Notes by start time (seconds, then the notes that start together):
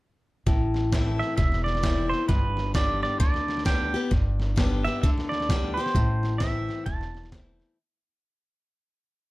0.46 A1 A2, kick, snare
0.74 snare
0.92 E3 A3 C4 E4, kick, snare, hi-hat pedal
1.19 E5, snare
1.37 E1 E2 E5, kick, snare
1.52 snare
1.64 D5, snare
1.75 snare
1.83 E3 A3 C4 E4, kick, snare, hi-hat pedal
2.09 C5, snare
2.28 G1 G2 B4, kick, snare
2.57 snare
2.74 D3 G3 B3 G4 D5, kick, snare, hi-hat pedal
3.03 D5, snare
3.20 D2 D3 D5, kick, snare
3.34 snare
3.48 snare
3.57 snare
3.65 D3 G3 B3 G4 G5, kick, snare, hi-hat pedal
3.94 B3 G4, snare
4.11 G1 G2, kick, snare
4.40 snare
4.56 D3 G3 B3 G4, kick, snare, hi-hat pedal
4.85 B3 G4 E5, snare
5.02 D2 D3 E5, kick, snare
5.18 snare
5.29 D5, snare
5.40 snare
5.49 D3 G3 B3 G4, kick, snare, hi-hat pedal
5.74 G4 C5, snare
5.80 B3
5.86 snare
5.95 A1 A2, kick, snare
6.23 snare
6.38 E3 A3 C4 E5, kick, snare, hi-hat pedal
6.43 E4
6.69 snare
6.86 E1 E2 A5, kick, snare
7.01 snare
7.15 snare
7.23 snare
7.32 E3 A3 C4 E4, kick, snare, hi-hat pedal
7.60 snare